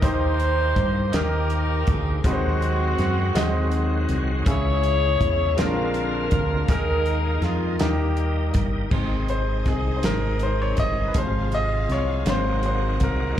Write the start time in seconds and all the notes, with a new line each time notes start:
Already playing: A#3 D#4 G4 A#4
0.02 D#2 D#3 D#4 G4 C5, kick, closed hi-hat
0.40 closed hi-hat
0.76 G2, kick, closed hi-hat
1.12 D#2 D#4 G4 A#4, snare, closed hi-hat
1.50 closed hi-hat
1.87 D2 G#4, kick, closed hi-hat
2.24 D#2 D#3 F#3 G#3 C4 D#4 F#4 B4, kick, closed hi-hat
2.32 C5
2.62 closed hi-hat
2.98 F#2, snare, closed hi-hat
3.35 D#2 G#3 C4 D#4 F#4 D#5, snare, closed hi-hat
3.71 closed hi-hat
4.09 C2, closed hi-hat
4.45 C#2 C#3 C#4 E4 G#4, kick, closed hi-hat
4.49 C#5
4.83 closed hi-hat
5.20 E2, kick, closed hi-hat
5.57 A#1 A#2 D3 G#3 A#3 C4 D4 F4 A#4, snare, closed hi-hat
5.94 closed hi-hat
6.31 D2, kick, closed hi-hat
6.68 D#2 D#3 D#4 G#4 A#4, kick, closed hi-hat
7.06 closed hi-hat
7.42 F2 F4, snare, closed hi-hat
7.79 D#2 D#3 G3 A#3 D#4 G4 A#4, snare, closed hi-hat
8.17 closed hi-hat
8.54 G1, kick, closed hi-hat
8.90 G#1 C3 D#3 G#3 C4 D#4 G#4 D#5, kick, crash
9.29 C5, closed hi-hat
9.66 C2 G#4, kick, snare, closed hi-hat
9.97 C5
10.03 G#1 A#4, snare, closed hi-hat
10.39 C5, closed hi-hat
10.62 C#5
10.77 G1 D#5, kick, closed hi-hat
11.08 B4
11.14 G#1 C3 F3 G#3 F4 F5, kick, closed hi-hat
11.18 C5
11.52 D#5, closed hi-hat
11.89 C2 C#5, snare, closed hi-hat
12.25 G#1 D#3 F#3 A#3 C4 F#4 A#4 F#5, snare, closed hi-hat
12.30 C5
12.63 C5, closed hi-hat
13.00 C2 A#4, kick, closed hi-hat